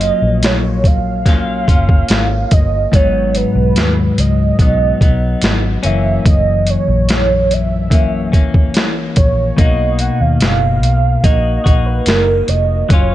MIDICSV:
0, 0, Header, 1, 5, 480
1, 0, Start_track
1, 0, Tempo, 832178
1, 1685, Time_signature, 4, 2, 24, 8
1, 7584, End_track
2, 0, Start_track
2, 0, Title_t, "Soft synth lead"
2, 0, Program_c, 0, 80
2, 0, Note_on_c, 0, 75, 112
2, 258, Note_on_c, 0, 73, 97
2, 267, Note_off_c, 0, 75, 0
2, 500, Note_on_c, 0, 77, 127
2, 509, Note_off_c, 0, 73, 0
2, 1458, Note_on_c, 0, 75, 99
2, 1467, Note_off_c, 0, 77, 0
2, 1692, Note_off_c, 0, 75, 0
2, 1701, Note_on_c, 0, 73, 95
2, 1943, Note_on_c, 0, 71, 103
2, 1951, Note_off_c, 0, 73, 0
2, 2419, Note_on_c, 0, 75, 94
2, 2428, Note_off_c, 0, 71, 0
2, 3132, Note_off_c, 0, 75, 0
2, 3376, Note_on_c, 0, 76, 97
2, 3622, Note_on_c, 0, 75, 108
2, 3631, Note_off_c, 0, 76, 0
2, 3863, Note_on_c, 0, 73, 100
2, 3872, Note_off_c, 0, 75, 0
2, 4346, Note_on_c, 0, 76, 101
2, 4355, Note_off_c, 0, 73, 0
2, 5055, Note_off_c, 0, 76, 0
2, 5287, Note_on_c, 0, 73, 98
2, 5529, Note_on_c, 0, 75, 107
2, 5537, Note_off_c, 0, 73, 0
2, 5769, Note_on_c, 0, 78, 106
2, 5778, Note_off_c, 0, 75, 0
2, 5889, Note_on_c, 0, 77, 119
2, 5898, Note_off_c, 0, 78, 0
2, 6484, Note_on_c, 0, 75, 118
2, 6493, Note_off_c, 0, 77, 0
2, 6841, Note_on_c, 0, 71, 91
2, 6849, Note_off_c, 0, 75, 0
2, 6961, Note_on_c, 0, 70, 94
2, 6970, Note_off_c, 0, 71, 0
2, 7203, Note_on_c, 0, 75, 86
2, 7212, Note_off_c, 0, 70, 0
2, 7442, Note_off_c, 0, 75, 0
2, 7450, Note_on_c, 0, 73, 96
2, 7581, Note_off_c, 0, 73, 0
2, 7584, End_track
3, 0, Start_track
3, 0, Title_t, "Clean electric guitar"
3, 0, Program_c, 1, 27
3, 0, Note_on_c, 1, 54, 73
3, 0, Note_on_c, 1, 58, 70
3, 0, Note_on_c, 1, 61, 75
3, 0, Note_on_c, 1, 65, 83
3, 722, Note_off_c, 1, 54, 0
3, 724, Note_off_c, 1, 58, 0
3, 725, Note_on_c, 1, 54, 54
3, 731, Note_off_c, 1, 61, 0
3, 731, Note_on_c, 1, 58, 56
3, 735, Note_off_c, 1, 65, 0
3, 740, Note_on_c, 1, 61, 60
3, 745, Note_on_c, 1, 65, 57
3, 960, Note_off_c, 1, 65, 0
3, 965, Note_off_c, 1, 54, 0
3, 967, Note_on_c, 1, 65, 49
3, 968, Note_off_c, 1, 58, 0
3, 970, Note_off_c, 1, 61, 0
3, 977, Note_on_c, 1, 61, 46
3, 985, Note_on_c, 1, 58, 38
3, 1683, Note_on_c, 1, 44, 74
3, 1686, Note_off_c, 1, 65, 0
3, 1691, Note_off_c, 1, 61, 0
3, 1695, Note_off_c, 1, 58, 0
3, 1695, Note_on_c, 1, 54, 71
3, 1703, Note_on_c, 1, 59, 65
3, 1710, Note_on_c, 1, 63, 70
3, 2639, Note_off_c, 1, 44, 0
3, 2646, Note_on_c, 1, 44, 55
3, 2653, Note_off_c, 1, 54, 0
3, 2655, Note_off_c, 1, 59, 0
3, 2655, Note_on_c, 1, 54, 56
3, 2658, Note_off_c, 1, 63, 0
3, 2662, Note_on_c, 1, 59, 57
3, 2666, Note_on_c, 1, 63, 60
3, 2882, Note_off_c, 1, 63, 0
3, 2886, Note_off_c, 1, 44, 0
3, 2889, Note_on_c, 1, 63, 54
3, 2890, Note_off_c, 1, 54, 0
3, 2892, Note_off_c, 1, 59, 0
3, 2899, Note_on_c, 1, 59, 51
3, 2908, Note_on_c, 1, 54, 43
3, 3360, Note_off_c, 1, 63, 0
3, 3362, Note_on_c, 1, 61, 60
3, 3368, Note_off_c, 1, 59, 0
3, 3371, Note_on_c, 1, 58, 52
3, 3378, Note_off_c, 1, 54, 0
3, 3380, Note_on_c, 1, 52, 59
3, 3390, Note_on_c, 1, 42, 47
3, 4552, Note_off_c, 1, 42, 0
3, 4558, Note_off_c, 1, 52, 0
3, 4559, Note_on_c, 1, 42, 56
3, 4563, Note_off_c, 1, 61, 0
3, 4565, Note_on_c, 1, 52, 57
3, 4570, Note_off_c, 1, 58, 0
3, 4572, Note_on_c, 1, 58, 61
3, 4580, Note_on_c, 1, 61, 62
3, 4792, Note_off_c, 1, 61, 0
3, 4799, Note_on_c, 1, 61, 57
3, 4802, Note_off_c, 1, 42, 0
3, 4803, Note_off_c, 1, 58, 0
3, 4805, Note_off_c, 1, 52, 0
3, 4810, Note_on_c, 1, 58, 51
3, 4818, Note_on_c, 1, 52, 44
3, 5518, Note_on_c, 1, 47, 77
3, 5521, Note_off_c, 1, 61, 0
3, 5524, Note_off_c, 1, 58, 0
3, 5527, Note_on_c, 1, 58, 83
3, 5531, Note_off_c, 1, 52, 0
3, 5537, Note_on_c, 1, 63, 76
3, 5544, Note_on_c, 1, 66, 71
3, 6480, Note_off_c, 1, 47, 0
3, 6481, Note_off_c, 1, 58, 0
3, 6481, Note_off_c, 1, 63, 0
3, 6483, Note_on_c, 1, 58, 57
3, 6488, Note_on_c, 1, 63, 62
3, 6492, Note_off_c, 1, 66, 0
3, 6494, Note_on_c, 1, 66, 57
3, 6708, Note_off_c, 1, 66, 0
3, 6714, Note_on_c, 1, 66, 60
3, 6719, Note_off_c, 1, 63, 0
3, 6723, Note_off_c, 1, 58, 0
3, 6725, Note_on_c, 1, 63, 53
3, 6733, Note_on_c, 1, 58, 42
3, 7434, Note_on_c, 1, 54, 66
3, 7443, Note_off_c, 1, 63, 0
3, 7453, Note_on_c, 1, 61, 76
3, 7459, Note_off_c, 1, 66, 0
3, 7461, Note_on_c, 1, 65, 71
3, 7584, Note_off_c, 1, 54, 0
3, 7584, Note_off_c, 1, 58, 0
3, 7584, Note_off_c, 1, 61, 0
3, 7584, Note_off_c, 1, 65, 0
3, 7584, End_track
4, 0, Start_track
4, 0, Title_t, "Fingered electric bass"
4, 0, Program_c, 2, 33
4, 126, Note_on_c, 2, 34, 88
4, 943, Note_off_c, 2, 34, 0
4, 970, Note_on_c, 2, 30, 81
4, 1160, Note_off_c, 2, 30, 0
4, 1211, Note_on_c, 2, 32, 83
4, 1401, Note_off_c, 2, 32, 0
4, 1453, Note_on_c, 2, 31, 76
4, 1642, Note_off_c, 2, 31, 0
4, 1690, Note_on_c, 2, 32, 83
4, 1976, Note_off_c, 2, 32, 0
4, 2049, Note_on_c, 2, 35, 87
4, 2144, Note_off_c, 2, 35, 0
4, 2170, Note_on_c, 2, 39, 81
4, 2360, Note_off_c, 2, 39, 0
4, 2412, Note_on_c, 2, 37, 82
4, 2601, Note_off_c, 2, 37, 0
4, 2647, Note_on_c, 2, 35, 82
4, 2838, Note_off_c, 2, 35, 0
4, 2890, Note_on_c, 2, 35, 84
4, 3080, Note_off_c, 2, 35, 0
4, 3130, Note_on_c, 2, 32, 87
4, 3321, Note_off_c, 2, 32, 0
4, 3371, Note_on_c, 2, 30, 89
4, 3561, Note_off_c, 2, 30, 0
4, 3608, Note_on_c, 2, 30, 88
4, 3895, Note_off_c, 2, 30, 0
4, 3967, Note_on_c, 2, 34, 90
4, 4807, Note_off_c, 2, 34, 0
4, 4807, Note_on_c, 2, 30, 88
4, 5042, Note_off_c, 2, 30, 0
4, 5042, Note_on_c, 2, 32, 92
4, 5235, Note_off_c, 2, 32, 0
4, 5289, Note_on_c, 2, 34, 78
4, 5479, Note_off_c, 2, 34, 0
4, 5528, Note_on_c, 2, 35, 96
4, 5814, Note_off_c, 2, 35, 0
4, 5888, Note_on_c, 2, 39, 77
4, 5983, Note_off_c, 2, 39, 0
4, 6004, Note_on_c, 2, 30, 86
4, 6242, Note_off_c, 2, 30, 0
4, 6242, Note_on_c, 2, 35, 90
4, 6434, Note_off_c, 2, 35, 0
4, 6482, Note_on_c, 2, 34, 87
4, 6674, Note_off_c, 2, 34, 0
4, 6726, Note_on_c, 2, 34, 80
4, 6917, Note_off_c, 2, 34, 0
4, 6962, Note_on_c, 2, 30, 97
4, 7154, Note_off_c, 2, 30, 0
4, 7201, Note_on_c, 2, 29, 81
4, 7393, Note_off_c, 2, 29, 0
4, 7441, Note_on_c, 2, 30, 85
4, 7584, Note_off_c, 2, 30, 0
4, 7584, End_track
5, 0, Start_track
5, 0, Title_t, "Drums"
5, 4, Note_on_c, 9, 42, 67
5, 61, Note_off_c, 9, 42, 0
5, 245, Note_on_c, 9, 42, 79
5, 256, Note_on_c, 9, 38, 96
5, 303, Note_off_c, 9, 42, 0
5, 313, Note_off_c, 9, 38, 0
5, 484, Note_on_c, 9, 36, 71
5, 490, Note_on_c, 9, 42, 58
5, 542, Note_off_c, 9, 36, 0
5, 548, Note_off_c, 9, 42, 0
5, 725, Note_on_c, 9, 36, 75
5, 727, Note_on_c, 9, 42, 77
5, 735, Note_on_c, 9, 38, 32
5, 783, Note_off_c, 9, 36, 0
5, 785, Note_off_c, 9, 42, 0
5, 793, Note_off_c, 9, 38, 0
5, 969, Note_on_c, 9, 36, 69
5, 973, Note_on_c, 9, 42, 54
5, 1027, Note_off_c, 9, 36, 0
5, 1031, Note_off_c, 9, 42, 0
5, 1089, Note_on_c, 9, 36, 79
5, 1147, Note_off_c, 9, 36, 0
5, 1203, Note_on_c, 9, 42, 81
5, 1217, Note_on_c, 9, 38, 104
5, 1260, Note_off_c, 9, 42, 0
5, 1275, Note_off_c, 9, 38, 0
5, 1448, Note_on_c, 9, 42, 70
5, 1451, Note_on_c, 9, 36, 86
5, 1506, Note_off_c, 9, 42, 0
5, 1509, Note_off_c, 9, 36, 0
5, 1690, Note_on_c, 9, 36, 106
5, 1693, Note_on_c, 9, 42, 81
5, 1748, Note_off_c, 9, 36, 0
5, 1751, Note_off_c, 9, 42, 0
5, 1930, Note_on_c, 9, 42, 68
5, 1988, Note_off_c, 9, 42, 0
5, 2169, Note_on_c, 9, 42, 75
5, 2179, Note_on_c, 9, 38, 97
5, 2227, Note_off_c, 9, 42, 0
5, 2237, Note_off_c, 9, 38, 0
5, 2411, Note_on_c, 9, 42, 61
5, 2469, Note_off_c, 9, 42, 0
5, 2647, Note_on_c, 9, 36, 82
5, 2650, Note_on_c, 9, 42, 74
5, 2705, Note_off_c, 9, 36, 0
5, 2707, Note_off_c, 9, 42, 0
5, 2890, Note_on_c, 9, 36, 76
5, 2895, Note_on_c, 9, 42, 60
5, 2948, Note_off_c, 9, 36, 0
5, 2952, Note_off_c, 9, 42, 0
5, 3124, Note_on_c, 9, 42, 86
5, 3139, Note_on_c, 9, 38, 102
5, 3182, Note_off_c, 9, 42, 0
5, 3196, Note_off_c, 9, 38, 0
5, 3366, Note_on_c, 9, 42, 67
5, 3423, Note_off_c, 9, 42, 0
5, 3608, Note_on_c, 9, 36, 104
5, 3610, Note_on_c, 9, 42, 80
5, 3666, Note_off_c, 9, 36, 0
5, 3668, Note_off_c, 9, 42, 0
5, 3845, Note_on_c, 9, 42, 66
5, 3902, Note_off_c, 9, 42, 0
5, 4087, Note_on_c, 9, 42, 79
5, 4097, Note_on_c, 9, 38, 97
5, 4145, Note_off_c, 9, 42, 0
5, 4155, Note_off_c, 9, 38, 0
5, 4332, Note_on_c, 9, 42, 60
5, 4389, Note_off_c, 9, 42, 0
5, 4564, Note_on_c, 9, 36, 89
5, 4567, Note_on_c, 9, 42, 76
5, 4621, Note_off_c, 9, 36, 0
5, 4624, Note_off_c, 9, 42, 0
5, 4807, Note_on_c, 9, 36, 73
5, 4811, Note_on_c, 9, 42, 58
5, 4865, Note_off_c, 9, 36, 0
5, 4868, Note_off_c, 9, 42, 0
5, 4927, Note_on_c, 9, 36, 77
5, 4985, Note_off_c, 9, 36, 0
5, 5042, Note_on_c, 9, 42, 80
5, 5057, Note_on_c, 9, 38, 106
5, 5100, Note_off_c, 9, 42, 0
5, 5114, Note_off_c, 9, 38, 0
5, 5283, Note_on_c, 9, 42, 67
5, 5288, Note_on_c, 9, 36, 90
5, 5341, Note_off_c, 9, 42, 0
5, 5345, Note_off_c, 9, 36, 0
5, 5526, Note_on_c, 9, 36, 106
5, 5528, Note_on_c, 9, 42, 72
5, 5584, Note_off_c, 9, 36, 0
5, 5585, Note_off_c, 9, 42, 0
5, 5761, Note_on_c, 9, 42, 68
5, 5818, Note_off_c, 9, 42, 0
5, 6002, Note_on_c, 9, 42, 74
5, 6012, Note_on_c, 9, 38, 99
5, 6059, Note_off_c, 9, 42, 0
5, 6069, Note_off_c, 9, 38, 0
5, 6248, Note_on_c, 9, 42, 59
5, 6305, Note_off_c, 9, 42, 0
5, 6482, Note_on_c, 9, 36, 80
5, 6483, Note_on_c, 9, 42, 72
5, 6539, Note_off_c, 9, 36, 0
5, 6541, Note_off_c, 9, 42, 0
5, 6725, Note_on_c, 9, 36, 75
5, 6729, Note_on_c, 9, 42, 65
5, 6782, Note_off_c, 9, 36, 0
5, 6787, Note_off_c, 9, 42, 0
5, 6956, Note_on_c, 9, 42, 86
5, 6971, Note_on_c, 9, 38, 105
5, 7014, Note_off_c, 9, 42, 0
5, 7028, Note_off_c, 9, 38, 0
5, 7199, Note_on_c, 9, 42, 64
5, 7256, Note_off_c, 9, 42, 0
5, 7441, Note_on_c, 9, 36, 101
5, 7441, Note_on_c, 9, 42, 68
5, 7499, Note_off_c, 9, 36, 0
5, 7499, Note_off_c, 9, 42, 0
5, 7584, End_track
0, 0, End_of_file